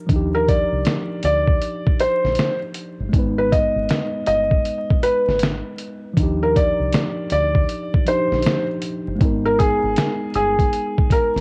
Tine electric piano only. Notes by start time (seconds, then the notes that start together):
Already playing: G4
0.07 F3 D4
0.13 D#4 G4
3.09 G#3 B3
3.15 D#4 B4
6.13 F3 D4
6.20 D#4 G4
8.05 F3 D4 D#4
8.10 G4
9.16 G#3 B3
9.22 D#4 A#4